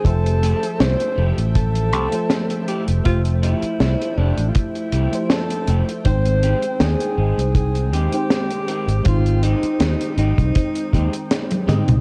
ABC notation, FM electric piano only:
X:1
M:4/4
L:1/16
Q:"Swing 16ths" 1/4=80
K:F
V:1 name="FM electric piano"
[F,A,Gce]8- [F,A,Gce]3 [F,A,Gce]4- [F,A,Gce] | [F,A,Gce]8- [F,A,Gce]3 [F,A,Gce]4- [F,A,Gce] | [_A,C_Ecg]8- [A,CEcg]3 [A,CEcg]4- [A,CEcg] | [_A,C_EGc]8- [A,CEGc]3 z3 [A,CEG_e]2 |]